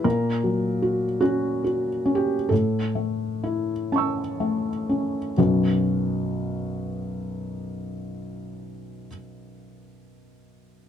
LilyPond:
\new Staff \with { instrumentName = "Felt piano" } { \time 4/4 \key a \mixolydian \tempo 4 = 43 << { ais'4 fis'8. g'16 a'4 <a'' cis''' e'''>4 | <b,, fis, fis b cis' fis'>1 | } \\ { \tuplet 3/2 { ais,8 fis8 fis'8 cis'8 fis'8 cis'8 a,8 a8 e'8 cis'8 a8 cis'8 } | r1 | } >> }